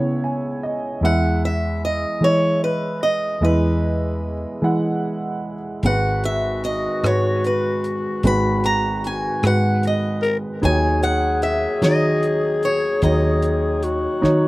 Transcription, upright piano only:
0.00 0.98 C#2 soft
0.00 0.97 C#3 soft
0.00 1.04 B3 medium
0.00 1.03 E4 medium
0.00 1.04 G#4 medium
0.00 0.74 C#5 medium
0.24 0.60 G#5 soft
0.63 1.00 D#5 medium
1.03 3.38 E2 soft
1.03 3.38 E3 soft
1.03 1.93 G#3 medium
1.03 1.93 E4 medium
1.03 1.93 E5 medium
2.22 3.12 G#3 medium
2.22 3.13 E4 medium
2.22 3.13 D#5 medium
3.41 5.80 E2 soft
3.41 5.79 E3 soft
3.41 4.33 G#3 medium
3.41 4.33 E4 medium
3.41 4.33 D#5 medium
4.62 5.53 G#3 medium
4.62 5.54 E4 medium
4.62 5.55 F#5 medium
5.84 8.21 G#1 soft
5.84 8.21 G#2 soft
5.84 6.75 G#3 medium
5.84 6.75 F#4 soft
5.84 6.75 B4 medium
7.03 7.94 G#3 medium
7.03 7.94 F#4 medium
7.03 7.95 B4 medium
8.24 10.59 G#1 medium
8.24 10.59 G#2 soft
8.24 9.14 G#3 medium
8.24 9.15 F#4 medium
8.24 9.15 B4 medium
9.43 10.34 G#3 medium
9.43 10.34 F#4 medium
9.43 10.34 B4 medium
10.62 12.98 D#2 medium
10.62 12.99 D#3 soft
10.62 11.53 F#3 medium
10.62 11.53 D#4 medium
10.62 11.54 C#5 medium
11.82 12.73 F#3 medium
11.82 12.73 D#4 soft
11.82 12.74 C#5 medium
13.03 14.48 D#2 medium
13.03 14.48 D#3 soft
13.03 13.94 F#3 medium
13.03 13.94 D#4 medium
13.03 13.95 C#5 medium
14.21 14.48 F#3 medium
14.21 14.48 D#4 medium
14.21 14.48 C#5 medium

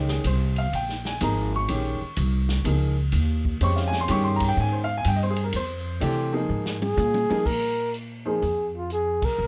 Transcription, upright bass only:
0.00 0.23 C#2 medium
0.24 0.71 C2 medium
0.73 1.19 A#1 medium
1.21 1.67 G#1 medium
1.69 1.98 A#1 medium
2.01 muted upright bass stroke soft
2.17 2.63 C2 medium
2.64 3.11 C#2 medium
3.12 3.59 D#2 medium
3.61 4.07 F2 medium
4.09 4.55 G2 loud
4.57 5.04 G#2 medium
5.05 5.52 G2 medium
5.53 6.00 F2 medium
6.02 6.48 C3 medium
6.49 6.96 G#2 medium
6.97 7.27 A#2 loud
7.30 muted upright bass stroke soft
7.46 8.38 A#2 medium
8.42 9.18 F2 medium
9.23 9.37 B1 medium
9.38 9.47 A#1 medium

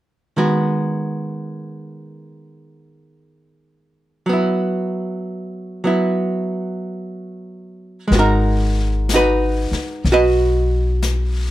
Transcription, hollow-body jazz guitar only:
0.37 4.24 D#3 soft
0.37 4.25 G#3 soft
0.37 4.25 B3 soft
0.37 4.25 F#4 soft
4.26 5.83 F#3 soft
4.26 5.84 B3 soft
4.33 5.86 E4 soft
5.84 8.07 F#3 soft
5.84 8.11 B3 soft
5.84 8.12 E4 soft
8.08 11.51 G#3 soft
8.12 8.19 B3 soft
8.12 8.18 F#4 soft
8.19 9.13 D#4 soft
8.19 9.13 F#4 soft
8.19 9.08 A#4 soft
9.14 10.12 D#4 soft
9.14 10.11 F#4 soft
9.14 10.05 B4 medium
10.12 11.51 F#4 medium
10.12 11.51 B4 soft
10.12 11.51 D#5 medium

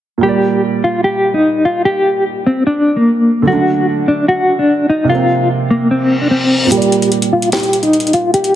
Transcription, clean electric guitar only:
0.23 0.61 G4 loud
0.84 1.00 F4 medium
1.04 1.33 G4 medium
1.34 1.63 D#4 medium
1.65 1.81 F4 medium
1.85 2.23 G4 loud
2.46 2.63 C4 medium
2.67 2.95 D4 medium
2.97 3.44 A#3 medium
3.48 3.86 F#4 loud
4.08 4.25 D4 medium
4.28 4.57 F#4 medium
4.59 4.88 D4 medium
4.90 5.06 D#4 medium
5.09 5.48 F4 loud
5.71 5.87 A#3 medium
5.91 6.19 C4 medium
6.21 6.29 D4 medium
6.31 6.69 C4 medium
6.72 7.10 G4 medium
7.33 7.49 F4 medium
7.53 7.81 G4 medium
7.83 8.12 D#4 medium
8.14 8.30 F4 medium
8.34 8.55 G4 loud

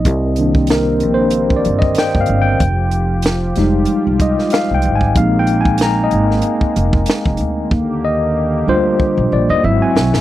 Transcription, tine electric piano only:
0.00 0.34 D#5 medium
0.39 0.81 D#3 soft
0.39 0.82 A#3 soft
0.39 0.82 D4 medium
0.71 1.14 A#4 medium
1.14 1.57 C5 medium
1.57 1.75 D5 medium
1.79 1.97 D#5 medium
1.99 2.20 G5 medium
2.21 2.41 F5 medium
2.42 3.32 G5 medium
3.57 4.00 G3 medium
3.57 4.01 G#3 medium
3.57 4.01 D#4 medium
4.22 4.51 D#5 medium
4.53 4.75 F5 medium
4.74 4.96 G5 medium
4.96 5.15 G#5 medium
5.17 6.08 G#3 soft
5.17 6.08 C4 soft
5.17 6.09 D#4 soft
5.17 5.39 F5 medium
5.39 5.60 G5 medium
5.61 5.80 G#5 medium
5.82 6.03 A#5 loud
6.04 7.58 D#5 medium
8.05 8.64 D#5 medium
8.67 9.11 G3 medium
8.67 9.11 D4 medium
8.67 9.11 F4 medium
8.67 9.34 C5 loud
9.33 9.48 D5 medium
9.50 9.63 D#5 loud
9.64 10.07 F#3 medium
9.64 10.07 C4 medium
9.64 10.07 E4 medium
9.64 9.81 E5 medium
9.82 10.11 G#5 medium

